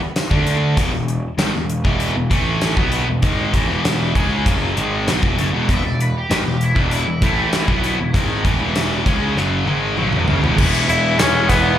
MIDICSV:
0, 0, Header, 1, 10, 480
1, 0, Start_track
1, 0, Key_signature, 4, "major"
1, 0, Tempo, 612870
1, 605, Time_signature, 4, 2, 24, 8
1, 9231, End_track
2, 0, Start_track
2, 0, Title_t, "Overdriven electric guitar"
2, 0, Program_c, 0, 29
2, 4470, Note_on_c, 0, 76, 85
2, 4579, Note_off_c, 0, 76, 0
2, 4592, Note_on_c, 0, 74, 68
2, 4700, Note_off_c, 0, 74, 0
2, 4711, Note_on_c, 0, 71, 74
2, 4819, Note_off_c, 0, 71, 0
2, 4839, Note_on_c, 0, 67, 73
2, 4943, Note_off_c, 0, 67, 0
2, 4958, Note_on_c, 0, 71, 70
2, 5063, Note_off_c, 0, 71, 0
2, 5074, Note_on_c, 0, 67, 75
2, 5181, Note_off_c, 0, 67, 0
2, 5192, Note_on_c, 0, 64, 64
2, 5318, Note_off_c, 0, 64, 0
2, 5318, Note_on_c, 0, 62, 70
2, 5423, Note_off_c, 0, 62, 0
2, 5436, Note_on_c, 0, 64, 74
2, 5658, Note_off_c, 0, 64, 0
2, 5671, Note_on_c, 0, 64, 83
2, 6592, Note_off_c, 0, 64, 0
2, 9231, End_track
3, 0, Start_track
3, 0, Title_t, "String machine"
3, 0, Program_c, 1, 50
3, 8293, Note_on_c, 1, 64, 84
3, 8294, Note_on_c, 1, 59, 82
3, 8294, Note_on_c, 1, 68, 92
3, 8294, Note_on_c, 1, 76, 91
3, 9231, Note_off_c, 1, 59, 0
3, 9231, Note_off_c, 1, 64, 0
3, 9231, Note_off_c, 1, 68, 0
3, 9231, Note_off_c, 1, 76, 0
3, 9231, End_track
4, 0, Start_track
4, 0, Title_t, "Tenor saxophone"
4, 0, Program_c, 2, 66
4, 8530, Note_on_c, 2, 64, 90
4, 8762, Note_on_c, 2, 61, 93
4, 8773, Note_off_c, 2, 64, 0
4, 9003, Note_on_c, 2, 59, 98
4, 9015, Note_off_c, 2, 61, 0
4, 9231, Note_off_c, 2, 59, 0
4, 9231, End_track
5, 0, Start_track
5, 0, Title_t, "Distorted electric guitar"
5, 0, Program_c, 3, 30
5, 239, Note_on_c, 3, 50, 86
5, 246, Note_on_c, 3, 57, 87
5, 250, Note_on_c, 3, 62, 82
5, 596, Note_off_c, 3, 50, 0
5, 599, Note_off_c, 3, 57, 0
5, 600, Note_on_c, 3, 40, 79
5, 601, Note_off_c, 3, 62, 0
5, 606, Note_on_c, 3, 47, 89
5, 712, Note_off_c, 3, 40, 0
5, 717, Note_off_c, 3, 47, 0
5, 721, Note_on_c, 3, 40, 57
5, 726, Note_on_c, 3, 47, 70
5, 916, Note_off_c, 3, 40, 0
5, 919, Note_off_c, 3, 47, 0
5, 1079, Note_on_c, 3, 44, 78
5, 1084, Note_on_c, 3, 51, 81
5, 1197, Note_off_c, 3, 44, 0
5, 1199, Note_off_c, 3, 51, 0
5, 1201, Note_on_c, 3, 40, 57
5, 1203, Note_on_c, 3, 47, 68
5, 1397, Note_off_c, 3, 40, 0
5, 1398, Note_off_c, 3, 47, 0
5, 1441, Note_on_c, 3, 40, 75
5, 1445, Note_on_c, 3, 47, 86
5, 1452, Note_on_c, 3, 52, 86
5, 1677, Note_off_c, 3, 40, 0
5, 1681, Note_off_c, 3, 47, 0
5, 1684, Note_off_c, 3, 52, 0
5, 1686, Note_on_c, 3, 40, 61
5, 1692, Note_on_c, 3, 47, 72
5, 1796, Note_off_c, 3, 47, 0
5, 1799, Note_on_c, 3, 45, 78
5, 1806, Note_on_c, 3, 52, 89
5, 1808, Note_off_c, 3, 40, 0
5, 1811, Note_on_c, 3, 57, 82
5, 2158, Note_off_c, 3, 45, 0
5, 2162, Note_off_c, 3, 52, 0
5, 2162, Note_on_c, 3, 47, 74
5, 2164, Note_off_c, 3, 57, 0
5, 2167, Note_on_c, 3, 54, 76
5, 2171, Note_on_c, 3, 59, 102
5, 2400, Note_off_c, 3, 47, 0
5, 2402, Note_off_c, 3, 54, 0
5, 2404, Note_off_c, 3, 59, 0
5, 2405, Note_on_c, 3, 40, 58
5, 2411, Note_on_c, 3, 47, 62
5, 2520, Note_off_c, 3, 40, 0
5, 2524, Note_on_c, 3, 44, 84
5, 2527, Note_off_c, 3, 47, 0
5, 2530, Note_on_c, 3, 51, 88
5, 2534, Note_on_c, 3, 56, 99
5, 2761, Note_off_c, 3, 44, 0
5, 2764, Note_off_c, 3, 51, 0
5, 2766, Note_off_c, 3, 56, 0
5, 2773, Note_on_c, 3, 45, 90
5, 2780, Note_on_c, 3, 52, 79
5, 2886, Note_off_c, 3, 45, 0
5, 2889, Note_off_c, 3, 52, 0
5, 2890, Note_on_c, 3, 40, 78
5, 2894, Note_on_c, 3, 47, 83
5, 2899, Note_on_c, 3, 52, 90
5, 3244, Note_off_c, 3, 40, 0
5, 3247, Note_off_c, 3, 47, 0
5, 3249, Note_off_c, 3, 52, 0
5, 3255, Note_on_c, 3, 49, 89
5, 3259, Note_on_c, 3, 56, 83
5, 3264, Note_on_c, 3, 61, 90
5, 3487, Note_off_c, 3, 49, 0
5, 3488, Note_on_c, 3, 42, 84
5, 3489, Note_off_c, 3, 56, 0
5, 3492, Note_off_c, 3, 61, 0
5, 3496, Note_on_c, 3, 49, 99
5, 3498, Note_on_c, 3, 54, 91
5, 3724, Note_off_c, 3, 42, 0
5, 3728, Note_off_c, 3, 49, 0
5, 3729, Note_off_c, 3, 54, 0
5, 3731, Note_on_c, 3, 44, 83
5, 3735, Note_on_c, 3, 51, 83
5, 3740, Note_on_c, 3, 56, 85
5, 3965, Note_off_c, 3, 44, 0
5, 3967, Note_off_c, 3, 51, 0
5, 3970, Note_off_c, 3, 56, 0
5, 3971, Note_on_c, 3, 47, 80
5, 3979, Note_on_c, 3, 54, 102
5, 4085, Note_off_c, 3, 47, 0
5, 4089, Note_off_c, 3, 54, 0
5, 4094, Note_on_c, 3, 40, 82
5, 4100, Note_on_c, 3, 47, 96
5, 4207, Note_off_c, 3, 40, 0
5, 4210, Note_off_c, 3, 47, 0
5, 4215, Note_on_c, 3, 42, 104
5, 4220, Note_on_c, 3, 49, 97
5, 4327, Note_off_c, 3, 42, 0
5, 4330, Note_off_c, 3, 49, 0
5, 4332, Note_on_c, 3, 40, 85
5, 4337, Note_on_c, 3, 47, 93
5, 4441, Note_off_c, 3, 40, 0
5, 4449, Note_off_c, 3, 47, 0
5, 4450, Note_on_c, 3, 40, 92
5, 4456, Note_on_c, 3, 47, 100
5, 4565, Note_off_c, 3, 40, 0
5, 4566, Note_off_c, 3, 47, 0
5, 4574, Note_on_c, 3, 40, 53
5, 4576, Note_on_c, 3, 47, 70
5, 4766, Note_off_c, 3, 40, 0
5, 4767, Note_off_c, 3, 47, 0
5, 4931, Note_on_c, 3, 44, 70
5, 4939, Note_on_c, 3, 51, 85
5, 5044, Note_off_c, 3, 44, 0
5, 5047, Note_on_c, 3, 40, 60
5, 5048, Note_off_c, 3, 51, 0
5, 5051, Note_on_c, 3, 47, 68
5, 5243, Note_off_c, 3, 40, 0
5, 5245, Note_off_c, 3, 47, 0
5, 5288, Note_on_c, 3, 40, 82
5, 5291, Note_on_c, 3, 47, 84
5, 5299, Note_on_c, 3, 52, 74
5, 5524, Note_off_c, 3, 40, 0
5, 5525, Note_off_c, 3, 47, 0
5, 5529, Note_off_c, 3, 52, 0
5, 5539, Note_on_c, 3, 40, 60
5, 5541, Note_on_c, 3, 47, 66
5, 5655, Note_off_c, 3, 47, 0
5, 5656, Note_off_c, 3, 40, 0
5, 5658, Note_on_c, 3, 45, 77
5, 5665, Note_on_c, 3, 52, 78
5, 5669, Note_on_c, 3, 57, 88
5, 6008, Note_off_c, 3, 45, 0
5, 6012, Note_off_c, 3, 52, 0
5, 6014, Note_off_c, 3, 57, 0
5, 6014, Note_on_c, 3, 47, 84
5, 6023, Note_on_c, 3, 54, 84
5, 6026, Note_on_c, 3, 59, 100
5, 6246, Note_off_c, 3, 47, 0
5, 6251, Note_off_c, 3, 54, 0
5, 6252, Note_off_c, 3, 59, 0
5, 6262, Note_on_c, 3, 40, 61
5, 6265, Note_on_c, 3, 47, 70
5, 6369, Note_off_c, 3, 40, 0
5, 6372, Note_on_c, 3, 44, 86
5, 6374, Note_off_c, 3, 47, 0
5, 6377, Note_on_c, 3, 51, 93
5, 6383, Note_on_c, 3, 56, 98
5, 6604, Note_off_c, 3, 44, 0
5, 6607, Note_off_c, 3, 51, 0
5, 6610, Note_off_c, 3, 56, 0
5, 6618, Note_on_c, 3, 45, 74
5, 6622, Note_on_c, 3, 52, 87
5, 6728, Note_off_c, 3, 45, 0
5, 6730, Note_off_c, 3, 52, 0
5, 6736, Note_on_c, 3, 40, 84
5, 6739, Note_on_c, 3, 47, 80
5, 6746, Note_on_c, 3, 52, 100
5, 7085, Note_off_c, 3, 40, 0
5, 7087, Note_off_c, 3, 47, 0
5, 7090, Note_off_c, 3, 52, 0
5, 7091, Note_on_c, 3, 49, 76
5, 7100, Note_on_c, 3, 56, 77
5, 7102, Note_on_c, 3, 61, 90
5, 7323, Note_off_c, 3, 49, 0
5, 7327, Note_off_c, 3, 56, 0
5, 7328, Note_off_c, 3, 61, 0
5, 7332, Note_on_c, 3, 42, 80
5, 7340, Note_on_c, 3, 49, 92
5, 7345, Note_on_c, 3, 54, 93
5, 7562, Note_off_c, 3, 42, 0
5, 7566, Note_off_c, 3, 49, 0
5, 7569, Note_off_c, 3, 54, 0
5, 7572, Note_on_c, 3, 44, 82
5, 7578, Note_on_c, 3, 51, 72
5, 7583, Note_on_c, 3, 56, 93
5, 7802, Note_off_c, 3, 44, 0
5, 7805, Note_off_c, 3, 51, 0
5, 7808, Note_off_c, 3, 56, 0
5, 7814, Note_on_c, 3, 47, 84
5, 7819, Note_on_c, 3, 54, 80
5, 7923, Note_off_c, 3, 47, 0
5, 7926, Note_off_c, 3, 54, 0
5, 7938, Note_on_c, 3, 40, 70
5, 7942, Note_on_c, 3, 47, 82
5, 8044, Note_off_c, 3, 40, 0
5, 8047, Note_off_c, 3, 47, 0
5, 8055, Note_on_c, 3, 42, 90
5, 8062, Note_on_c, 3, 49, 99
5, 8163, Note_off_c, 3, 42, 0
5, 8166, Note_off_c, 3, 49, 0
5, 8175, Note_on_c, 3, 40, 84
5, 8183, Note_on_c, 3, 47, 89
5, 8282, Note_off_c, 3, 40, 0
5, 8286, Note_off_c, 3, 47, 0
5, 8290, Note_on_c, 3, 52, 100
5, 8296, Note_on_c, 3, 56, 102
5, 8300, Note_on_c, 3, 59, 100
5, 8301, Note_on_c, 3, 64, 107
5, 8518, Note_off_c, 3, 52, 0
5, 8526, Note_off_c, 3, 56, 0
5, 8527, Note_on_c, 3, 52, 77
5, 8533, Note_off_c, 3, 64, 0
5, 8535, Note_off_c, 3, 59, 0
5, 8536, Note_on_c, 3, 56, 82
5, 8538, Note_on_c, 3, 59, 86
5, 8542, Note_on_c, 3, 64, 91
5, 8752, Note_off_c, 3, 52, 0
5, 8760, Note_off_c, 3, 56, 0
5, 8762, Note_on_c, 3, 52, 80
5, 8768, Note_off_c, 3, 59, 0
5, 8769, Note_off_c, 3, 64, 0
5, 8769, Note_on_c, 3, 56, 75
5, 8771, Note_on_c, 3, 59, 78
5, 8779, Note_on_c, 3, 64, 81
5, 8994, Note_off_c, 3, 52, 0
5, 8999, Note_off_c, 3, 56, 0
5, 9004, Note_on_c, 3, 52, 86
5, 9007, Note_off_c, 3, 64, 0
5, 9008, Note_on_c, 3, 56, 78
5, 9012, Note_off_c, 3, 59, 0
5, 9015, Note_on_c, 3, 59, 82
5, 9016, Note_on_c, 3, 64, 89
5, 9231, Note_off_c, 3, 52, 0
5, 9231, Note_off_c, 3, 56, 0
5, 9231, Note_off_c, 3, 59, 0
5, 9231, Note_off_c, 3, 64, 0
5, 9231, End_track
6, 0, Start_track
6, 0, Title_t, "Distorted electric guitar"
6, 0, Program_c, 4, 30
6, 8286, Note_on_c, 4, 40, 89
6, 8288, Note_on_c, 4, 47, 90
6, 8514, Note_off_c, 4, 40, 0
6, 8516, Note_off_c, 4, 47, 0
6, 8523, Note_on_c, 4, 40, 77
6, 8526, Note_on_c, 4, 47, 92
6, 8752, Note_off_c, 4, 40, 0
6, 8758, Note_off_c, 4, 47, 0
6, 8762, Note_on_c, 4, 40, 87
6, 8767, Note_on_c, 4, 47, 95
6, 8991, Note_off_c, 4, 40, 0
6, 8996, Note_off_c, 4, 47, 0
6, 9001, Note_on_c, 4, 40, 81
6, 9005, Note_on_c, 4, 47, 94
6, 9231, Note_off_c, 4, 40, 0
6, 9231, Note_off_c, 4, 47, 0
6, 9231, End_track
7, 0, Start_track
7, 0, Title_t, "Picked electric bass"
7, 0, Program_c, 5, 34
7, 242, Note_on_c, 5, 38, 78
7, 579, Note_off_c, 5, 38, 0
7, 605, Note_on_c, 5, 28, 77
7, 717, Note_off_c, 5, 28, 0
7, 721, Note_on_c, 5, 28, 79
7, 947, Note_off_c, 5, 28, 0
7, 1082, Note_on_c, 5, 32, 83
7, 1196, Note_off_c, 5, 32, 0
7, 1208, Note_on_c, 5, 28, 69
7, 1432, Note_off_c, 5, 28, 0
7, 1447, Note_on_c, 5, 28, 92
7, 1672, Note_off_c, 5, 28, 0
7, 1689, Note_on_c, 5, 28, 70
7, 1801, Note_off_c, 5, 28, 0
7, 1811, Note_on_c, 5, 33, 85
7, 2146, Note_off_c, 5, 33, 0
7, 2166, Note_on_c, 5, 35, 85
7, 2392, Note_off_c, 5, 35, 0
7, 2409, Note_on_c, 5, 28, 67
7, 2522, Note_off_c, 5, 28, 0
7, 2528, Note_on_c, 5, 32, 84
7, 2753, Note_off_c, 5, 32, 0
7, 2769, Note_on_c, 5, 33, 89
7, 2883, Note_off_c, 5, 33, 0
7, 2887, Note_on_c, 5, 28, 86
7, 3225, Note_off_c, 5, 28, 0
7, 3255, Note_on_c, 5, 37, 82
7, 3477, Note_off_c, 5, 37, 0
7, 3494, Note_on_c, 5, 30, 85
7, 3717, Note_off_c, 5, 30, 0
7, 3732, Note_on_c, 5, 32, 90
7, 3956, Note_off_c, 5, 32, 0
7, 3976, Note_on_c, 5, 35, 76
7, 4087, Note_off_c, 5, 35, 0
7, 4096, Note_on_c, 5, 28, 84
7, 4207, Note_off_c, 5, 28, 0
7, 4210, Note_on_c, 5, 30, 90
7, 4324, Note_off_c, 5, 30, 0
7, 4333, Note_on_c, 5, 28, 88
7, 4445, Note_off_c, 5, 28, 0
7, 4457, Note_on_c, 5, 28, 87
7, 4567, Note_off_c, 5, 28, 0
7, 4580, Note_on_c, 5, 28, 78
7, 4800, Note_off_c, 5, 28, 0
7, 4940, Note_on_c, 5, 32, 84
7, 5049, Note_off_c, 5, 32, 0
7, 5060, Note_on_c, 5, 28, 74
7, 5280, Note_off_c, 5, 28, 0
7, 5294, Note_on_c, 5, 28, 88
7, 5517, Note_off_c, 5, 28, 0
7, 5533, Note_on_c, 5, 28, 74
7, 5645, Note_off_c, 5, 28, 0
7, 5656, Note_on_c, 5, 33, 79
7, 5989, Note_off_c, 5, 33, 0
7, 6015, Note_on_c, 5, 35, 87
7, 6237, Note_off_c, 5, 35, 0
7, 6256, Note_on_c, 5, 28, 64
7, 6366, Note_off_c, 5, 28, 0
7, 6377, Note_on_c, 5, 32, 82
7, 6597, Note_off_c, 5, 32, 0
7, 6616, Note_on_c, 5, 33, 88
7, 6723, Note_off_c, 5, 33, 0
7, 6728, Note_on_c, 5, 28, 78
7, 7063, Note_off_c, 5, 28, 0
7, 7097, Note_on_c, 5, 37, 82
7, 7316, Note_off_c, 5, 37, 0
7, 7327, Note_on_c, 5, 30, 85
7, 7551, Note_off_c, 5, 30, 0
7, 7566, Note_on_c, 5, 32, 78
7, 7790, Note_off_c, 5, 32, 0
7, 7808, Note_on_c, 5, 35, 78
7, 7919, Note_off_c, 5, 35, 0
7, 7931, Note_on_c, 5, 28, 78
7, 8040, Note_off_c, 5, 28, 0
7, 8047, Note_on_c, 5, 30, 83
7, 8158, Note_off_c, 5, 30, 0
7, 8171, Note_on_c, 5, 28, 81
7, 8279, Note_off_c, 5, 28, 0
7, 8290, Note_on_c, 5, 28, 89
7, 8516, Note_off_c, 5, 28, 0
7, 8523, Note_on_c, 5, 28, 89
7, 8752, Note_off_c, 5, 28, 0
7, 8759, Note_on_c, 5, 28, 89
7, 8989, Note_off_c, 5, 28, 0
7, 9003, Note_on_c, 5, 28, 87
7, 9230, Note_off_c, 5, 28, 0
7, 9231, End_track
8, 0, Start_track
8, 0, Title_t, "Muted distorted electric guitar strokes"
8, 5, Note_on_c, 9, 29, 50
8, 84, Note_off_c, 9, 29, 0
8, 9231, End_track
9, 0, Start_track
9, 0, Title_t, "Muted picked electric bass strokes"
9, 1, Note_on_c, 9, 29, 39
9, 79, Note_off_c, 9, 29, 0
9, 9231, End_track
10, 0, Start_track
10, 0, Title_t, "Drums"
10, 124, Note_on_c, 9, 42, 68
10, 124, Note_on_c, 9, 54, 88
10, 127, Note_on_c, 9, 38, 90
10, 202, Note_off_c, 9, 42, 0
10, 202, Note_off_c, 9, 54, 0
10, 206, Note_off_c, 9, 38, 0
10, 244, Note_on_c, 9, 36, 97
10, 322, Note_off_c, 9, 36, 0
10, 365, Note_on_c, 9, 42, 59
10, 443, Note_off_c, 9, 42, 0
10, 605, Note_on_c, 9, 36, 101
10, 605, Note_on_c, 9, 42, 84
10, 683, Note_off_c, 9, 36, 0
10, 684, Note_off_c, 9, 42, 0
10, 849, Note_on_c, 9, 42, 52
10, 927, Note_off_c, 9, 42, 0
10, 1085, Note_on_c, 9, 42, 75
10, 1085, Note_on_c, 9, 54, 93
10, 1088, Note_on_c, 9, 38, 100
10, 1164, Note_off_c, 9, 42, 0
10, 1164, Note_off_c, 9, 54, 0
10, 1167, Note_off_c, 9, 38, 0
10, 1328, Note_on_c, 9, 42, 54
10, 1406, Note_off_c, 9, 42, 0
10, 1447, Note_on_c, 9, 36, 94
10, 1525, Note_off_c, 9, 36, 0
10, 1566, Note_on_c, 9, 42, 72
10, 1644, Note_off_c, 9, 42, 0
10, 1808, Note_on_c, 9, 36, 89
10, 1811, Note_on_c, 9, 42, 56
10, 1887, Note_off_c, 9, 36, 0
10, 1890, Note_off_c, 9, 42, 0
10, 2047, Note_on_c, 9, 42, 65
10, 2047, Note_on_c, 9, 54, 97
10, 2050, Note_on_c, 9, 38, 89
10, 2126, Note_off_c, 9, 42, 0
10, 2126, Note_off_c, 9, 54, 0
10, 2129, Note_off_c, 9, 38, 0
10, 2169, Note_on_c, 9, 36, 98
10, 2247, Note_off_c, 9, 36, 0
10, 2285, Note_on_c, 9, 42, 60
10, 2363, Note_off_c, 9, 42, 0
10, 2526, Note_on_c, 9, 42, 80
10, 2529, Note_on_c, 9, 36, 99
10, 2604, Note_off_c, 9, 42, 0
10, 2607, Note_off_c, 9, 36, 0
10, 2770, Note_on_c, 9, 36, 86
10, 2770, Note_on_c, 9, 42, 55
10, 2848, Note_off_c, 9, 42, 0
10, 2849, Note_off_c, 9, 36, 0
10, 3015, Note_on_c, 9, 42, 81
10, 3015, Note_on_c, 9, 54, 94
10, 3018, Note_on_c, 9, 38, 102
10, 3093, Note_off_c, 9, 42, 0
10, 3093, Note_off_c, 9, 54, 0
10, 3096, Note_off_c, 9, 38, 0
10, 3253, Note_on_c, 9, 36, 86
10, 3255, Note_on_c, 9, 42, 53
10, 3332, Note_off_c, 9, 36, 0
10, 3333, Note_off_c, 9, 42, 0
10, 3494, Note_on_c, 9, 36, 100
10, 3494, Note_on_c, 9, 42, 81
10, 3572, Note_off_c, 9, 36, 0
10, 3572, Note_off_c, 9, 42, 0
10, 3736, Note_on_c, 9, 42, 60
10, 3814, Note_off_c, 9, 42, 0
10, 3976, Note_on_c, 9, 42, 74
10, 3976, Note_on_c, 9, 54, 85
10, 3979, Note_on_c, 9, 38, 92
10, 4054, Note_off_c, 9, 42, 0
10, 4054, Note_off_c, 9, 54, 0
10, 4058, Note_off_c, 9, 38, 0
10, 4096, Note_on_c, 9, 36, 98
10, 4174, Note_off_c, 9, 36, 0
10, 4218, Note_on_c, 9, 42, 60
10, 4296, Note_off_c, 9, 42, 0
10, 4456, Note_on_c, 9, 36, 99
10, 4460, Note_on_c, 9, 42, 78
10, 4534, Note_off_c, 9, 36, 0
10, 4538, Note_off_c, 9, 42, 0
10, 4703, Note_on_c, 9, 42, 58
10, 4781, Note_off_c, 9, 42, 0
10, 4940, Note_on_c, 9, 42, 83
10, 4940, Note_on_c, 9, 54, 108
10, 4943, Note_on_c, 9, 38, 102
10, 5019, Note_off_c, 9, 42, 0
10, 5019, Note_off_c, 9, 54, 0
10, 5022, Note_off_c, 9, 38, 0
10, 5176, Note_on_c, 9, 42, 55
10, 5255, Note_off_c, 9, 42, 0
10, 5295, Note_on_c, 9, 36, 96
10, 5373, Note_off_c, 9, 36, 0
10, 5415, Note_on_c, 9, 42, 78
10, 5493, Note_off_c, 9, 42, 0
10, 5654, Note_on_c, 9, 42, 52
10, 5655, Note_on_c, 9, 36, 103
10, 5732, Note_off_c, 9, 42, 0
10, 5733, Note_off_c, 9, 36, 0
10, 5895, Note_on_c, 9, 42, 67
10, 5895, Note_on_c, 9, 54, 94
10, 5898, Note_on_c, 9, 38, 100
10, 5973, Note_off_c, 9, 42, 0
10, 5973, Note_off_c, 9, 54, 0
10, 5976, Note_off_c, 9, 38, 0
10, 6016, Note_on_c, 9, 36, 105
10, 6094, Note_off_c, 9, 36, 0
10, 6138, Note_on_c, 9, 42, 56
10, 6216, Note_off_c, 9, 42, 0
10, 6377, Note_on_c, 9, 36, 94
10, 6380, Note_on_c, 9, 42, 74
10, 6455, Note_off_c, 9, 36, 0
10, 6459, Note_off_c, 9, 42, 0
10, 6616, Note_on_c, 9, 36, 85
10, 6618, Note_on_c, 9, 42, 50
10, 6695, Note_off_c, 9, 36, 0
10, 6696, Note_off_c, 9, 42, 0
10, 6857, Note_on_c, 9, 42, 70
10, 6857, Note_on_c, 9, 54, 110
10, 6860, Note_on_c, 9, 38, 97
10, 6935, Note_off_c, 9, 42, 0
10, 6935, Note_off_c, 9, 54, 0
10, 6938, Note_off_c, 9, 38, 0
10, 7096, Note_on_c, 9, 36, 90
10, 7098, Note_on_c, 9, 42, 53
10, 7175, Note_off_c, 9, 36, 0
10, 7177, Note_off_c, 9, 42, 0
10, 7341, Note_on_c, 9, 38, 57
10, 7420, Note_off_c, 9, 38, 0
10, 7577, Note_on_c, 9, 48, 57
10, 7655, Note_off_c, 9, 48, 0
10, 7811, Note_on_c, 9, 47, 65
10, 7890, Note_off_c, 9, 47, 0
10, 7930, Note_on_c, 9, 45, 69
10, 8009, Note_off_c, 9, 45, 0
10, 8049, Note_on_c, 9, 43, 90
10, 8127, Note_off_c, 9, 43, 0
10, 8174, Note_on_c, 9, 43, 79
10, 8252, Note_off_c, 9, 43, 0
10, 8290, Note_on_c, 9, 36, 112
10, 8291, Note_on_c, 9, 49, 126
10, 8368, Note_off_c, 9, 36, 0
10, 8369, Note_off_c, 9, 49, 0
10, 8415, Note_on_c, 9, 54, 70
10, 8494, Note_off_c, 9, 54, 0
10, 8532, Note_on_c, 9, 42, 71
10, 8610, Note_off_c, 9, 42, 0
10, 8766, Note_on_c, 9, 42, 97
10, 8766, Note_on_c, 9, 54, 110
10, 8767, Note_off_c, 9, 54, 0
10, 8767, Note_on_c, 9, 54, 89
10, 8769, Note_on_c, 9, 38, 123
10, 8844, Note_off_c, 9, 42, 0
10, 8846, Note_off_c, 9, 54, 0
10, 8848, Note_off_c, 9, 38, 0
10, 9002, Note_on_c, 9, 42, 70
10, 9003, Note_on_c, 9, 36, 71
10, 9013, Note_on_c, 9, 54, 67
10, 9081, Note_off_c, 9, 36, 0
10, 9081, Note_off_c, 9, 42, 0
10, 9091, Note_off_c, 9, 54, 0
10, 9231, End_track
0, 0, End_of_file